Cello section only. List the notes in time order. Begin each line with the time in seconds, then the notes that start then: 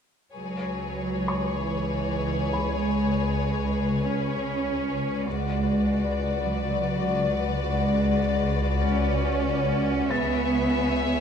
0.35 F#3
1.59 E3
2.80 G#3
4.05 C#4
5.27 G#3
6.46 F#3
7.66 G#3
8.89 C#4
10.10 B3